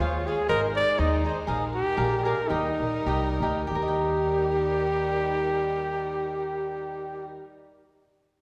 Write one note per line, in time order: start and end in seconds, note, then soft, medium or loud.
0.00 0.32 D#2 medium
0.00 2.46 G#3 medium
0.00 0.16 F4 medium
0.00 0.28 F4 medium
0.00 0.48 F4 medium
0.00 0.16 G#4 medium
0.00 0.47 C#5 medium
0.00 0.16 C#5 medium
0.00 0.17 F5 medium
0.27 0.40 F4 soft
0.27 0.49 G#4 medium
0.27 0.40 G#4 medium
0.27 0.41 C#5 soft
0.27 0.41 F5 medium
0.48 0.81 G#1 medium
0.48 0.65 D#4 soft
0.48 1.96 D#4 medium
0.48 0.65 G#4 medium
0.48 0.61 A#4 medium
0.48 0.65 C5 medium
0.48 1.46 C5 medium
0.48 0.66 D#5 medium
0.76 1.01 D5 loud
0.98 1.30 D#2 medium
0.98 1.14 D#4 medium
0.98 1.25 D#4 medium
0.98 1.14 G#4 soft
0.98 1.14 C5 medium
0.98 1.15 D#5 medium
1.24 1.38 D#4 soft
1.24 1.38 G#4 soft
1.24 1.39 C5 medium
1.24 1.39 D#5 soft
1.47 1.80 A#1 medium
1.47 1.63 G#4 medium
1.47 1.63 A#4 medium
1.47 2.47 A#4 medium
1.47 1.64 D#5 medium
1.47 1.64 F5 medium
1.75 2.25 G4 medium
1.97 2.31 A#1 medium
1.97 2.48 D4 medium
1.97 2.14 G#4 medium
1.97 2.14 A#4 medium
1.97 2.14 D5 medium
1.97 2.14 F5 medium
2.24 2.39 G#4 medium
2.24 2.50 A#4 medium
2.24 2.40 A#4 medium
2.24 2.40 D5 medium
2.24 2.40 F5 medium
2.47 2.70 D#2 medium
2.47 3.70 G3 medium
2.47 3.70 D#4 medium
2.47 3.41 D#4 medium
2.47 2.67 G4 medium
2.47 3.70 A#4 medium
2.47 2.67 A#4 soft
2.47 2.68 D#5 medium
2.47 2.68 G5 medium
2.80 3.04 A#1 medium
3.06 3.38 C2 medium
3.06 3.27 G4 medium
3.06 3.27 A#4 medium
3.06 3.28 D#5 medium
3.06 3.28 G5 medium
3.40 3.69 D2 medium
3.40 3.60 G4 medium
3.40 3.60 A#4 soft
3.40 3.60 D#5 medium
3.40 3.61 G5 medium
3.67 7.36 G4 medium
3.67 7.26 G4 medium
3.71 7.36 D#2 medium
3.71 7.27 G3 medium
3.71 7.27 D#4 medium
3.71 7.27 A#4 medium
3.71 7.44 A#4 medium
3.82 7.51 D#5 medium
3.88 7.57 G5 medium